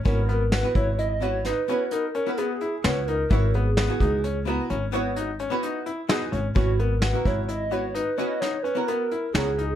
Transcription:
<<
  \new Staff \with { instrumentName = "Analog synth lead" } { \time 7/4 \key e \lydian \tempo 4 = 129 ais'4 b'8 cis''8 dis''8 cis''8 b'4 ais'8 ais'8 gis'4 b'8 ais'8~ | ais'8 gis'2. r2. r8 | fis'8 ais'8 b'8 cis''8 dis''8 cis''8 b'8 dis''8 cis''8 b'8 ais'4 gis'4 | }
  \new Staff \with { instrumentName = "Hollow-body jazz guitar" } { \time 7/4 \key e \lydian <b e' fis'>8. r8 <b e' fis' b'>8. r8 <b e' fis' b'>8 r8 <b e' fis' b'>8. r8 <b e' fis' b'>8. r8 <b e' fis' b'>8 r8 | <b e' fis' cis''>8. r8 <b e' fis' gis'>8. r8 <b e' fis' ais'>8 r8 <b e' fis' cis''>8. r8 <b e' fis' b'>8. r8 <b e' fis' gis'>8 r8 | <b e' fis' b'>8. r8 <b e' fis' ais'>8. r8 <b e' fis' b'>8 r8 <b e' fis' b'>8. r8 <b e' fis' ais'>8. r8 <b e' fis' ais'>8 r8 | }
  \new Staff \with { instrumentName = "Grand piano" } { \time 7/4 \key e \lydian cis'8 b8 fis'8 e'8 e'8 fis'8 dis'8 cis'8 dis'8 cis'8 b8 e'8 cis'8 dis'8 | e'8 b8 b8 dis'8 cis'8 b8 cis'8 b8 dis'8 cis'8 dis'8 e'8 dis'8 cis'8 | cis'8 b8 fis'8 e'8 e'8 fis'8 dis'8 cis'8 dis'8 cis'8 b8 e'8 cis'8 dis'8 | }
  \new Staff \with { instrumentName = "Upright bass" } { \clef bass \time 7/4 \key e \lydian gis,,4. gis,,2 r2 r8 cis,4 | gis,,4. cis,4. gis,,2 r4. gis,,8 | gis,,4. gis,,2 r2 r8 cis,4 | }
  \new DrumStaff \with { instrumentName = "Drums" } \drummode { \time 7/4 <hh bd>8 hh8 <hh sn>8 <hh bd>8 hh8 hh8 <hh sn>8 hh8 hh8 hh8 hh8 hh8 <hh sn>8 hh8 | <hh bd>8 hh8 <hh sn>8 <hh bd>8 hh8 hh8 hh8 hh8 hh8 hh8 hh8 hh8 <hh sn>8 hh8 | <hh bd>8 hh8 <hh sn>8 <hh bd>8 hh8 hh8 hh8 hh8 <hh sn>8 hh8 hh8 hh8 <hh sn>8 hh8 | }
>>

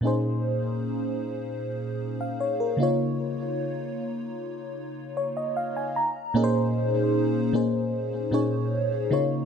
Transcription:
\new Staff \with { instrumentName = "FM electric piano" } { \time 4/4 \key bes \minor \tempo 4 = 76 << { r2 r8. f''16 des''16 bes'8 r16 | r2 r8 des''16 ees''16 f''16 aes''16 bes''8 | r1 | } \\ { <bes, bes des' ees' aes' c''>2.~ <bes, bes des' ees' aes' c''>8 <des bes ees' f' des''>8~ | <des bes ees' f' des''>2.~ <des bes ees' f' des''>8 r8 | <bes, bes des' ees' aes' bes' c''>4~ <bes, bes des' ees' aes' bes' c''>16 r16 <bes, bes des' ees' aes' c''>4 <bes, bes des' ees' aes' des''>4 <des bes ees' f' des''>8 | } >> }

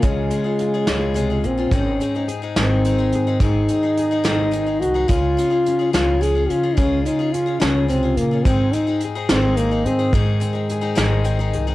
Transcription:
<<
  \new Staff \with { instrumentName = "Steel-string acoustic guitar" } { \time 6/8 \key aes \major \tempo 4. = 71 <des aes des' f' aes'>8 <aes des' f' aes'>16 <des' f' aes'>8 <des' f' aes'>16 <des aes des' f' aes'>8 <aes des' f' aes'>16 <des' f' aes'>8 <des' f' aes'>16 | <aes, ees aes c' ees' aes'>8 <aes c' ees' aes'>16 <aes c' ees' aes'>8 <aes c' ees' aes'>16 <aes, ees aes c' ees' aes'>8 <aes c' ees' aes'>16 <aes c' ees' aes'>8 <aes c' ees' aes'>16 | <aes, ees aes c' ees' aes'>8 <aes c' ees' aes'>16 <aes c' ees' aes'>8 <aes c' ees' aes'>16 <aes, ees aes c' ees' aes'>8 <aes c' ees' aes'>16 <aes c' ees' aes'>8 <aes c' ees' aes'>16 | <des aes des' f' aes'>8 <aes des' f' aes'>16 <des' f' aes'>8 <des' f' aes'>16 <des aes des' f' aes'>8 <aes des' f' aes'>16 <des' f' aes'>8 <des' f' aes'>16 |
<des aes des' f' aes'>8 <aes des' f' aes'>16 <des' f' aes'>8 <des' f' aes'>16 <des aes des' f' aes'>8 <aes des' f' aes'>16 <des' f' aes'>8 <des' f' aes'>16 | <aes, ees aes c' ees' aes'>8 <aes c' ees' aes'>16 <aes c' ees' aes'>8 <aes c' ees' aes'>16 <aes, ees aes c' ees' aes'>8 <aes c' ees' aes'>16 <aes c' ees' aes'>8 <aes c' ees' aes'>16 | <aes, ees aes c' ees' aes'>8 <aes c' ees' aes'>16 <aes c' ees' aes'>8 <aes c' ees' aes'>16 <aes, ees aes c' ees' aes'>8 <aes c' ees' aes'>16 <aes c' ees' aes'>8 <aes c' ees' aes'>16 | }
  \new Staff \with { instrumentName = "Trombone" } { \time 6/8 \key aes \major aes2~ aes8 c'8 | des'4 r8 c'4. | ees'2~ ees'8 ges'8 | f'4. f'8 aes'8 f'8 |
des'8 ees'8 f'8 des'8 c'8 bes8 | c'8 ees'8 r8 c'8 bes8 c'8 | aes2~ aes8 r8 | }
  \new Staff \with { instrumentName = "Steel-string acoustic guitar" } { \time 6/8 \key aes \major << { f'4 f'2 | r4 aes'8 ees'4 aes'8 | r4 aes'8 ees'4 ees'8 | r4 des'8 des'4 des'8 |
r4 des'2 | r4 aes'8 ees'4 aes'8 | r4 aes'8 ees'4 aes'8 | } \\ { des4. des8 c8 bes,8 | aes,4. ees4. | aes,4. ees4. | des4. f4. |
des4. des8 c8 bes,8 | aes,4. ees4. | aes,4. ees4. | } >> }
  \new Staff \with { instrumentName = "Upright bass" } { \clef bass \time 6/8 \key aes \major des,8 r4 des,4 bes,,8 | aes,,8 r4 aes,,4 aes,8 | aes,,8 r4 aes,,4 c,8 | des,8 r4 des,4 des8 |
des,8 r4 des,4 des8 | aes,,8 r4 aes,,4 aes,8 | aes,,8 r4 aes,,4 c,8 | }
  \new DrumStaff \with { instrumentName = "Drums" } \drummode { \time 6/8 <hh bd>8 hh8 hh8 <hh sn>8 hh8 hh8 | <hh bd>8 hh8 hh8 <hh sn>8 hh8 hh8 | <hh bd>8 hh8 hh8 <hh sn>8 hh8 hh8 | <hh bd>8 hh8 hh8 <hh sn>8 hh8 hh8 |
<hh bd>8 hh8 hh8 <hh sn>8 hh8 hh8 | <hh bd>8 hh8 hh8 <hh sn>8 hh8 hh8 | <hh bd>8 hh8 hh8 <hh sn>8 hh8 hh8 | }
>>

